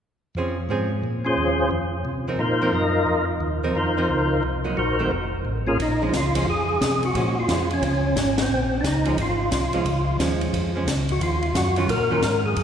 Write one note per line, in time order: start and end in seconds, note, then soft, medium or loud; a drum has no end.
0.35 0.68 F2 medium
0.35 0.56 F3 soft
0.35 0.56 C4 soft
0.35 0.56 C#4 medium
0.35 0.57 G#4 medium
0.69 1.02 G#2 medium
0.69 0.89 F3 soft
0.69 0.90 C4 soft
0.69 0.90 C#4 soft
0.69 0.90 G#4 medium
1.04 1.37 A#2 medium
1.25 1.69 C#4 medium
1.25 1.69 F4 soft
1.25 1.70 G#4 medium
1.25 1.70 C5 medium
1.37 1.71 D#2 medium
1.71 2.04 F2 medium
2.05 2.38 C3 medium
2.28 2.39 F3 soft
2.28 2.39 C4 soft
2.28 2.39 D#4 soft
2.28 2.39 A#4 soft
2.39 2.72 A#2 medium
2.39 2.72 D#4 soft
2.39 2.72 F4 soft
2.39 2.73 A#4 soft
2.39 2.73 C5 medium
2.62 2.72 F3 soft
2.62 2.73 C4 soft
2.62 2.73 D#4 soft
2.62 2.73 A#4 medium
2.73 3.06 F#2 medium
2.73 3.25 D#4 medium
2.73 3.25 F4 soft
2.73 3.25 A#4 soft
2.73 3.26 D#5 medium
3.07 3.40 F2 medium
3.40 3.74 D#2 medium
3.64 3.74 F3 medium
3.64 3.75 C4 medium
3.64 3.75 D#4 medium
3.64 3.75 A#4 medium
3.75 4.08 F2 medium
3.75 4.08 D#4 soft
3.75 4.08 F4 soft
3.75 4.09 A#4 soft
3.75 4.09 C5 soft
3.97 4.08 F3 soft
3.97 4.08 C4 medium
3.97 4.08 D#4 medium
3.97 4.09 A#4 medium
4.09 4.42 C#2 medium
4.09 4.43 D#4 soft
4.09 4.43 F4 soft
4.09 4.44 A#4 soft
4.09 4.44 C5 soft
4.43 4.76 C2 medium
4.64 4.76 F#3 medium
4.64 4.76 A#3 medium
4.64 4.76 D#4 medium
4.77 5.10 A#1 medium
4.77 5.11 D#4 soft
4.77 5.11 F#4 soft
4.77 5.12 A#4 soft
4.77 5.12 C5 medium
4.99 5.10 D#3 medium
4.99 5.10 A3 medium
4.99 5.11 C4 medium
5.11 5.44 F1 medium
5.45 5.78 A1 medium
5.67 5.78 A#2 soft
5.67 5.78 C#4 soft
5.67 5.78 F4 soft
5.67 5.78 G#4 soft
5.67 5.78 A#4 medium
5.79 6.12 A#1 medium
5.79 6.07 D#4 medium
5.79 kick soft
5.79 ride medium
6.02 6.12 F3 medium
6.02 6.12 G#3 medium
6.02 6.12 C#4 medium
6.09 6.46 C#2 medium
6.09 6.13 D#4 medium
6.09 kick soft
6.09 snare medium
6.13 6.46 F4 medium
6.13 hi-hat pedal soft
6.13 ride medium
6.35 6.45 F3 medium
6.35 6.46 G#3 medium
6.35 6.46 C#4 medium
6.35 ride medium
6.47 6.79 F2 medium
6.47 7.05 G#4 medium
6.47 kick soft
6.81 7.13 C3 medium
6.81 kick soft
6.81 snare medium
6.81 hi-hat pedal medium
6.81 ride medium
7.03 7.38 F#4 medium
7.03 ride soft
7.15 7.47 A#2 medium
7.15 7.34 F3 soft
7.15 7.35 G#3 soft
7.15 7.35 C#4 medium
7.15 kick soft
7.15 ride medium
7.40 7.69 F4 medium
7.48 7.81 F2 medium
7.48 7.68 F3 soft
7.48 7.68 G#3 soft
7.48 7.69 C#4 soft
7.48 kick soft
7.48 snare medium
7.48 hi-hat pedal soft
7.48 ride medium
7.71 7.84 C#4 medium
7.71 ride soft
7.82 8.15 C#2 medium
7.82 kick soft
7.82 ride medium
7.87 8.36 C#4 medium
8.16 8.49 G#1 medium
8.16 kick soft
8.16 snare medium
8.16 hi-hat pedal medium
8.16 ride medium
8.38 snare medium
8.38 ride medium
8.42 8.78 C4 medium
8.49 8.82 A#1 medium
8.81 9.16 C#2 medium
8.81 8.85 D4 medium
8.81 kick soft
8.81 snare medium
8.81 hi-hat pedal soft
8.81 ride medium
8.87 9.17 D#4 medium
9.05 9.16 F3 soft
9.05 9.17 G#3 medium
9.05 9.17 C#4 medium
9.05 ride soft
9.17 9.50 G#1 medium
9.17 kick soft
9.17 ride medium
9.22 10.17 F4 medium
9.51 9.84 C2 medium
9.51 kick soft
9.51 snare medium
9.51 hi-hat pedal soft
9.51 ride medium
9.73 9.84 F3 medium
9.73 9.85 G#3 medium
9.73 9.85 C#4 medium
9.73 ride soft
9.85 10.18 C#2 medium
9.85 kick soft
9.85 ride soft
10.19 10.52 D#2 medium
10.19 10.71 F3 medium
10.19 10.71 G#3 medium
10.19 10.71 C#4 medium
10.19 kick soft
10.19 snare medium
10.19 hi-hat pedal medium
10.19 ride medium
10.41 ride soft
10.53 10.86 F2 medium
10.53 kick soft
10.53 ride soft
10.76 10.86 F3 medium
10.76 10.87 G#3 medium
10.76 10.87 C#4 medium
10.87 11.20 C#2 medium
10.87 kick soft
10.87 snare medium
10.87 hi-hat pedal medium
10.87 ride medium
11.09 11.22 F#4 medium
11.09 ride soft
11.21 11.54 D#2 medium
11.21 11.57 F4 medium
11.21 kick soft
11.21 ride medium
11.43 ride soft
11.54 11.87 F#2 medium
11.54 11.87 F#4 medium
11.54 kick soft
11.54 snare medium
11.54 hi-hat pedal soft
11.54 ride medium
11.76 11.87 D#3 soft
11.76 11.88 F#3 medium
11.76 11.88 C#4 medium
11.76 11.88 F4 medium
11.76 ride soft
11.88 12.21 A#2 medium
11.88 12.41 A#4 medium
11.88 kick soft
11.88 ride medium
12.10 12.21 D#3 soft
12.10 12.21 F#3 medium
12.10 12.22 C#4 medium
12.10 12.22 F4 medium
12.22 12.55 G#2 medium
12.22 kick soft
12.22 snare medium
12.22 hi-hat pedal soft
12.22 ride medium
12.46 12.63 G#4 medium
12.56 12.63 F#2 medium
12.56 kick soft
12.56 ride medium